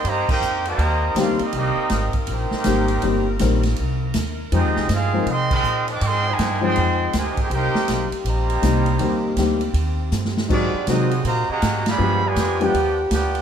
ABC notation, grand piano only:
X:1
M:4/4
L:1/8
Q:"Swing" 1/4=161
K:Cm
V:1 name="Grand piano"
z6 [E,G,B,CG] z | z6 [E,G,B,CG] z | [E,G,B,CG] z [E,G,B,CB] z4 z | [F,A,CEg]3 [F,A,CEB] z4 |
z3 [F,A,CEg]3 z2 | z6 [E,G,B,CG] z | [E,G,B,CG]2 [E,G,B,CG] z4 z | [E,_G,A,C_G] z [E,G,A,CG] z4 z |
[F,A,=B,DG] z2 [F,A,B,DG] z4 |]